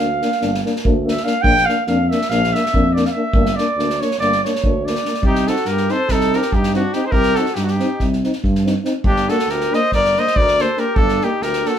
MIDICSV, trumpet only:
0, 0, Header, 1, 2, 480
1, 0, Start_track
1, 0, Tempo, 421941
1, 1635, Time_signature, 9, 3, 24, 8
1, 8353, Tempo, 425834
1, 13363, End_track
2, 0, Start_track
2, 0, Title_t, "Trumpet"
2, 0, Program_c, 0, 56
2, 0, Note_on_c, 0, 77, 80
2, 959, Note_off_c, 0, 77, 0
2, 1210, Note_on_c, 0, 76, 84
2, 1404, Note_on_c, 0, 77, 98
2, 1421, Note_off_c, 0, 76, 0
2, 1613, Note_on_c, 0, 79, 118
2, 1630, Note_off_c, 0, 77, 0
2, 1882, Note_on_c, 0, 77, 97
2, 1899, Note_off_c, 0, 79, 0
2, 2116, Note_off_c, 0, 77, 0
2, 2124, Note_on_c, 0, 77, 81
2, 2379, Note_on_c, 0, 76, 89
2, 2396, Note_off_c, 0, 77, 0
2, 2605, Note_on_c, 0, 77, 105
2, 2622, Note_off_c, 0, 76, 0
2, 2877, Note_on_c, 0, 76, 89
2, 2894, Note_off_c, 0, 77, 0
2, 3334, Note_on_c, 0, 74, 77
2, 3351, Note_off_c, 0, 76, 0
2, 3479, Note_on_c, 0, 77, 67
2, 3497, Note_off_c, 0, 74, 0
2, 3538, Note_on_c, 0, 76, 96
2, 3555, Note_off_c, 0, 77, 0
2, 4044, Note_on_c, 0, 74, 81
2, 4061, Note_off_c, 0, 76, 0
2, 4555, Note_on_c, 0, 73, 81
2, 4572, Note_off_c, 0, 74, 0
2, 4759, Note_off_c, 0, 73, 0
2, 4766, Note_on_c, 0, 74, 95
2, 5025, Note_off_c, 0, 74, 0
2, 5043, Note_on_c, 0, 73, 69
2, 5519, Note_on_c, 0, 74, 68
2, 5536, Note_off_c, 0, 73, 0
2, 5947, Note_off_c, 0, 74, 0
2, 5984, Note_on_c, 0, 63, 92
2, 6261, Note_on_c, 0, 66, 74
2, 6278, Note_off_c, 0, 63, 0
2, 6498, Note_on_c, 0, 67, 75
2, 6515, Note_off_c, 0, 66, 0
2, 6735, Note_on_c, 0, 69, 78
2, 6752, Note_off_c, 0, 67, 0
2, 6941, Note_on_c, 0, 63, 82
2, 6958, Note_off_c, 0, 69, 0
2, 7231, Note_on_c, 0, 67, 72
2, 7248, Note_off_c, 0, 63, 0
2, 7455, Note_on_c, 0, 63, 73
2, 7472, Note_off_c, 0, 67, 0
2, 7693, Note_off_c, 0, 63, 0
2, 7712, Note_on_c, 0, 62, 66
2, 7900, Note_on_c, 0, 63, 77
2, 7917, Note_off_c, 0, 62, 0
2, 8081, Note_on_c, 0, 69, 64
2, 8098, Note_off_c, 0, 63, 0
2, 8114, Note_on_c, 0, 67, 92
2, 8131, Note_off_c, 0, 69, 0
2, 8379, Note_on_c, 0, 66, 71
2, 8396, Note_off_c, 0, 67, 0
2, 8619, Note_on_c, 0, 63, 62
2, 8636, Note_off_c, 0, 66, 0
2, 8709, Note_on_c, 0, 62, 54
2, 8726, Note_off_c, 0, 63, 0
2, 8811, Note_on_c, 0, 63, 66
2, 8828, Note_off_c, 0, 62, 0
2, 9180, Note_off_c, 0, 63, 0
2, 10287, Note_on_c, 0, 62, 90
2, 10546, Note_on_c, 0, 66, 74
2, 10563, Note_off_c, 0, 62, 0
2, 10780, Note_on_c, 0, 67, 74
2, 10797, Note_off_c, 0, 66, 0
2, 11066, Note_on_c, 0, 72, 84
2, 11083, Note_off_c, 0, 67, 0
2, 11271, Note_off_c, 0, 72, 0
2, 11291, Note_on_c, 0, 70, 97
2, 11562, Note_on_c, 0, 72, 82
2, 11579, Note_off_c, 0, 70, 0
2, 11801, Note_on_c, 0, 70, 87
2, 11818, Note_off_c, 0, 72, 0
2, 12024, Note_on_c, 0, 69, 74
2, 12041, Note_off_c, 0, 70, 0
2, 12240, Note_on_c, 0, 67, 82
2, 12257, Note_off_c, 0, 69, 0
2, 12463, Note_on_c, 0, 62, 93
2, 12480, Note_off_c, 0, 67, 0
2, 12738, Note_on_c, 0, 63, 72
2, 12755, Note_off_c, 0, 62, 0
2, 12953, Note_on_c, 0, 67, 71
2, 12970, Note_off_c, 0, 63, 0
2, 13259, Note_on_c, 0, 66, 69
2, 13276, Note_off_c, 0, 67, 0
2, 13363, Note_off_c, 0, 66, 0
2, 13363, End_track
0, 0, End_of_file